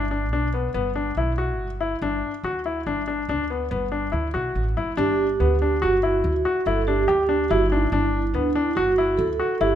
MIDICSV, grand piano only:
0, 0, Header, 1, 2, 480
1, 0, Start_track
1, 0, Key_signature, 1, "major"
1, 0, Tempo, 422238
1, 2291, Time_signature, 7, 2, 24, 8
1, 11085, End_track
2, 0, Start_track
2, 0, Title_t, "Grand piano"
2, 0, Program_c, 0, 0
2, 126, Note_on_c, 0, 62, 56
2, 289, Note_off_c, 0, 62, 0
2, 374, Note_on_c, 0, 62, 64
2, 534, Note_off_c, 0, 62, 0
2, 611, Note_on_c, 0, 59, 57
2, 772, Note_off_c, 0, 59, 0
2, 846, Note_on_c, 0, 59, 65
2, 1009, Note_off_c, 0, 59, 0
2, 1086, Note_on_c, 0, 62, 57
2, 1249, Note_off_c, 0, 62, 0
2, 1335, Note_on_c, 0, 64, 56
2, 1496, Note_off_c, 0, 64, 0
2, 1569, Note_on_c, 0, 66, 57
2, 1894, Note_off_c, 0, 66, 0
2, 2052, Note_on_c, 0, 64, 59
2, 2214, Note_off_c, 0, 64, 0
2, 2300, Note_on_c, 0, 62, 64
2, 2622, Note_off_c, 0, 62, 0
2, 2779, Note_on_c, 0, 66, 61
2, 2939, Note_off_c, 0, 66, 0
2, 3019, Note_on_c, 0, 64, 56
2, 3180, Note_off_c, 0, 64, 0
2, 3259, Note_on_c, 0, 62, 60
2, 3420, Note_off_c, 0, 62, 0
2, 3496, Note_on_c, 0, 62, 55
2, 3658, Note_off_c, 0, 62, 0
2, 3744, Note_on_c, 0, 62, 65
2, 3903, Note_off_c, 0, 62, 0
2, 3982, Note_on_c, 0, 59, 55
2, 4143, Note_off_c, 0, 59, 0
2, 4216, Note_on_c, 0, 59, 60
2, 4379, Note_off_c, 0, 59, 0
2, 4453, Note_on_c, 0, 62, 56
2, 4616, Note_off_c, 0, 62, 0
2, 4682, Note_on_c, 0, 64, 54
2, 4850, Note_off_c, 0, 64, 0
2, 4933, Note_on_c, 0, 66, 58
2, 5259, Note_off_c, 0, 66, 0
2, 5422, Note_on_c, 0, 64, 58
2, 5583, Note_off_c, 0, 64, 0
2, 5654, Note_on_c, 0, 62, 74
2, 5980, Note_off_c, 0, 62, 0
2, 6138, Note_on_c, 0, 59, 65
2, 6301, Note_off_c, 0, 59, 0
2, 6386, Note_on_c, 0, 62, 56
2, 6546, Note_off_c, 0, 62, 0
2, 6615, Note_on_c, 0, 66, 69
2, 6778, Note_off_c, 0, 66, 0
2, 6856, Note_on_c, 0, 64, 61
2, 7181, Note_off_c, 0, 64, 0
2, 7335, Note_on_c, 0, 66, 62
2, 7498, Note_off_c, 0, 66, 0
2, 7579, Note_on_c, 0, 64, 65
2, 7740, Note_off_c, 0, 64, 0
2, 7818, Note_on_c, 0, 62, 62
2, 7980, Note_off_c, 0, 62, 0
2, 8047, Note_on_c, 0, 67, 64
2, 8212, Note_off_c, 0, 67, 0
2, 8285, Note_on_c, 0, 62, 64
2, 8451, Note_off_c, 0, 62, 0
2, 8534, Note_on_c, 0, 64, 68
2, 8697, Note_off_c, 0, 64, 0
2, 8776, Note_on_c, 0, 62, 66
2, 8938, Note_off_c, 0, 62, 0
2, 9011, Note_on_c, 0, 62, 70
2, 9337, Note_off_c, 0, 62, 0
2, 9488, Note_on_c, 0, 59, 62
2, 9652, Note_off_c, 0, 59, 0
2, 9725, Note_on_c, 0, 62, 63
2, 9890, Note_off_c, 0, 62, 0
2, 9967, Note_on_c, 0, 66, 70
2, 10131, Note_off_c, 0, 66, 0
2, 10210, Note_on_c, 0, 64, 65
2, 10535, Note_off_c, 0, 64, 0
2, 10681, Note_on_c, 0, 66, 61
2, 10847, Note_off_c, 0, 66, 0
2, 10923, Note_on_c, 0, 64, 65
2, 11085, Note_off_c, 0, 64, 0
2, 11085, End_track
0, 0, End_of_file